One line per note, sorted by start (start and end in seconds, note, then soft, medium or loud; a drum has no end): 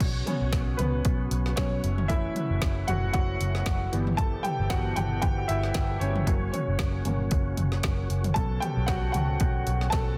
0.00 0.22 B1 medium
0.00 1.82 B2 medium
0.00 3.88 C#3 medium
0.00 3.88 F#3 medium
0.00 1.82 C#4 medium
0.00 3.88 F#4 medium
0.00 kick loud
0.00 closed hi-hat medium
0.00 crash medium
0.26 1.56 F#3 soft
0.26 0.78 B3 soft
0.26 1.56 C#4 medium
0.26 closed hi-hat medium
0.26 floor tom medium
0.41 0.51 B1 medium
0.53 0.74 B1 medium
0.53 kick loud
0.53 snare loud
0.53 closed hi-hat medium
0.77 1.00 C#2 medium
0.77 1.54 B3 medium
0.77 1.59 B4 medium
0.77 closed hi-hat medium
0.77 floor tom medium
1.05 1.27 B1 loud
1.05 kick loud
1.05 closed hi-hat medium
1.31 1.53 B1 medium
1.31 closed hi-hat medium
1.46 snare soft
1.56 1.79 B1 medium
1.56 1.81 F#3 soft
1.56 1.81 B3 soft
1.56 2.06 C#4 medium
1.56 2.05 C#5 medium
1.56 kick loud
1.56 snare loud
1.56 closed hi-hat medium
1.84 2.27 F#1 medium
1.84 3.90 A3 medium
1.84 6.23 E4 medium
1.84 closed hi-hat medium
1.98 floor tom medium
2.08 2.84 E3 medium
2.08 2.84 A3 soft
2.08 2.84 C#4 medium
2.08 2.84 E4 medium
2.08 2.90 E5 medium
2.08 kick loud
2.08 closed hi-hat medium
2.36 closed hi-hat medium
2.36 floor tom medium
2.50 2.60 F#1 medium
2.62 2.83 F#1 medium
2.62 kick loud
2.62 snare loud
2.62 closed hi-hat medium
2.87 3.10 F#1 medium
2.87 3.13 F#4 medium
2.87 3.12 F#5 medium
2.87 closed hi-hat medium
2.87 floor tom medium
3.13 3.36 F#1 medium
3.13 3.89 F#4 medium
3.13 3.88 F#5 loud
3.13 kick loud
3.13 closed hi-hat medium
3.41 3.62 F#1 medium
3.41 closed hi-hat medium
3.55 snare soft
3.66 3.88 F#1 loud
3.66 kick loud
3.66 snare loud
3.66 closed hi-hat medium
3.92 4.35 G1 medium
3.92 6.25 B2 medium
3.92 4.67 E3 medium
3.92 6.25 E3 medium
3.92 6.25 G3 medium
3.92 4.67 G3 soft
3.92 4.67 B3 medium
3.92 6.25 G4 medium
3.92 closed hi-hat medium
4.07 floor tom medium
4.17 4.25 A4 medium
4.17 4.23 A5 loud
4.17 kick loud
4.17 closed hi-hat medium
4.43 4.69 G4 medium
4.43 4.68 G5 medium
4.43 closed hi-hat medium
4.43 floor tom medium
4.59 4.69 G1 medium
4.70 4.92 G1 medium
4.70 4.94 E3 soft
4.70 4.95 G3 soft
4.70 4.95 B3 medium
4.70 4.96 F#4 medium
4.70 4.97 F#5 medium
4.70 kick loud
4.70 snare loud
4.70 closed hi-hat medium
4.96 5.18 G1 medium
4.96 5.04 G4 medium
4.96 5.02 G5 medium
4.96 closed hi-hat medium
4.96 floor tom medium
5.22 5.44 G1 loud
5.22 5.48 G4 medium
5.22 5.49 G5 loud
5.22 kick loud
5.22 closed hi-hat medium
5.48 5.71 G1 medium
5.48 5.98 E4 medium
5.48 6.02 E5 loud
5.48 closed hi-hat medium
5.63 snare soft
5.74 5.96 G1 loud
5.74 kick loud
5.74 snare loud
5.74 closed hi-hat medium
6.00 6.22 G1 medium
6.00 6.26 C#4 medium
6.00 6.49 C#5 medium
6.00 closed hi-hat medium
6.16 floor tom medium
6.27 6.49 F#1 medium
6.27 8.34 A#2 medium
6.27 8.34 C#3 medium
6.27 7.04 F#3 medium
6.27 10.15 F#3 medium
6.27 7.04 A#3 soft
6.27 10.15 C#4 medium
6.27 6.52 C#4 medium
6.27 10.18 F#4 medium
6.27 kick loud
6.27 closed hi-hat medium
6.52 7.04 C#4 medium
6.52 7.53 C#5 medium
6.52 closed hi-hat medium
6.52 floor tom medium
6.68 6.77 F#1 medium
6.79 7.01 F#1 loud
6.79 kick loud
6.79 snare loud
6.79 closed hi-hat medium
7.05 7.27 G1 medium
7.05 7.29 F#3 soft
7.05 7.29 A#3 soft
7.05 7.29 C#4 medium
7.05 closed hi-hat medium
7.05 floor tom medium
7.31 7.53 F#1 loud
7.31 kick loud
7.31 closed hi-hat medium
7.57 7.79 F#1 medium
7.57 closed hi-hat medium
7.57 floor tom medium
7.72 snare soft
7.83 8.05 F#1 loud
7.83 kick loud
7.83 snare loud
7.83 closed hi-hat medium
8.10 8.31 F#1 medium
8.10 closed hi-hat medium
8.24 closed hi-hat soft
8.24 floor tom medium
8.34 8.58 B1 medium
8.34 10.17 B2 medium
8.34 10.18 C#3 medium
8.34 9.10 F#3 medium
8.34 9.10 B3 soft
8.34 9.11 C#4 medium
8.34 8.61 A4 medium
8.34 8.59 A5 loud
8.34 kick loud
8.34 closed hi-hat medium
8.60 8.87 G4 medium
8.60 8.88 G5 medium
8.60 closed hi-hat medium
8.60 floor tom medium
8.77 8.86 B1 medium
8.86 8.95 F#4 medium
8.86 8.93 F#5 medium
8.86 kick loud
8.86 snare loud
8.86 closed hi-hat medium
9.12 9.36 C#2 medium
9.12 9.89 F#4 medium
9.12 9.94 F#5 medium
9.12 closed hi-hat medium
9.12 floor tom medium
9.40 9.62 B1 loud
9.40 kick loud
9.40 closed hi-hat medium
9.67 9.88 B1 loud
9.67 closed hi-hat medium
9.81 snare soft
9.90 10.18 A4 medium
9.90 10.18 A5 loud
9.90 kick loud
9.90 snare loud
9.90 closed hi-hat medium